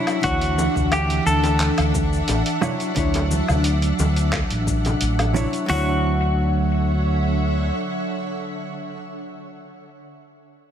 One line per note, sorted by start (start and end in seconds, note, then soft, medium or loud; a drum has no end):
0.00 0.19 F#3 medium
0.00 0.20 D4 medium
0.00 5.65 D4 medium
0.00 0.20 E4 medium
0.00 0.26 E4 medium
0.00 0.20 C#5 medium
0.00 5.65 E5 medium
0.00 5.65 F#5 medium
0.00 0.19 C#6 medium
0.07 closed hi-hat soft
0.07 high bongo medium
0.07 cabasa soft
0.07 low woodblock medium
0.21 0.66 D2 loud
0.21 2.57 E3 medium
0.21 2.58 D4 medium
0.21 2.59 E4 medium
0.21 0.92 F#4 loud
0.21 kick loud
0.21 closed hi-hat medium
0.21 cabasa soft
0.26 2.59 C#5 medium
0.41 closed hi-hat soft
0.41 cabasa soft
0.58 high bongo medium
0.58 high conga medium
0.58 cabasa medium
0.76 1.18 D2 medium
0.76 kick medium
0.76 low conga medium
0.76 cabasa soft
0.91 1.24 G4 loud
0.91 closed hi-hat medium
0.91 high bongo soft
0.91 cabasa soft
0.91 low woodblock medium
1.10 closed hi-hat soft
1.10 cabasa soft
1.26 1.69 D2 loud
1.26 4.97 A4 medium
1.26 high conga medium
1.26 cabasa medium
1.43 closed hi-hat soft
1.43 high bongo medium
1.43 cabasa soft
1.60 clap medium
1.60 closed hi-hat medium
1.60 cabasa soft
1.78 2.20 D2 medium
1.78 closed hi-hat soft
1.78 high bongo soft
1.78 cabasa soft
1.78 low woodblock medium
1.94 kick loud
1.94 cabasa medium
2.13 cabasa soft
2.28 2.40 A1 medium
2.28 closed hi-hat medium
2.28 high bongo medium
2.28 cabasa soft
2.46 closed hi-hat soft
2.46 cabasa soft
2.61 2.92 F#3 medium
2.61 2.92 D4 medium
2.61 2.93 E4 medium
2.61 2.93 C#5 loud
2.61 high bongo soft
2.61 high conga medium
2.61 low conga loud
2.61 cabasa medium
2.61 low woodblock medium
2.80 closed hi-hat soft
2.80 cabasa soft
2.95 3.39 D2 loud
2.95 5.30 F#3 medium
2.95 5.31 D4 medium
2.95 5.32 E4 medium
2.95 5.32 C#5 medium
2.95 kick loud
2.95 closed hi-hat medium
2.95 cabasa soft
3.14 closed hi-hat soft
3.14 high bongo medium
3.14 cabasa soft
3.31 high conga medium
3.31 cabasa medium
3.48 3.90 D2 medium
3.48 high bongo soft
3.48 low conga medium
3.48 cabasa soft
3.48 low woodblock medium
3.64 closed hi-hat medium
3.64 cabasa soft
3.82 closed hi-hat soft
3.82 cabasa soft
3.99 4.41 D2 loud
3.99 high bongo medium
3.99 high conga medium
3.99 cabasa medium
4.16 closed hi-hat soft
4.16 cabasa soft
4.32 kick loud
4.32 clap medium
4.32 closed hi-hat medium
4.32 high bongo medium
4.32 cabasa soft
4.32 low woodblock medium
4.50 4.93 A1 loud
4.50 closed hi-hat medium
4.50 cabasa soft
4.67 kick medium
4.67 cabasa medium
4.85 closed hi-hat soft
4.85 high bongo medium
4.85 low conga medium
4.85 cabasa soft
5.01 5.44 A1 loud
5.01 closed hi-hat medium
5.01 cabasa soft
5.19 closed hi-hat soft
5.19 high bongo medium
5.19 cabasa soft
5.19 low woodblock medium
5.34 5.65 F#3 medium
5.34 5.65 D4 medium
5.34 5.66 E4 medium
5.34 5.66 C#5 loud
5.34 high conga medium
5.34 low conga medium
5.34 cabasa medium
5.53 closed hi-hat soft
5.53 cabasa soft
5.66 7.70 D2 loud
5.66 9.18 D3 medium
5.66 9.86 F#3 medium
5.66 9.87 D4 medium
5.66 9.88 F#4 medium
5.66 9.18 C#5 medium
5.66 9.18 E5 medium
5.66 9.18 F#5 medium
5.66 snare loud
5.66 open hi-hat loud
5.70 9.88 E4 medium
5.70 9.90 C#5 loud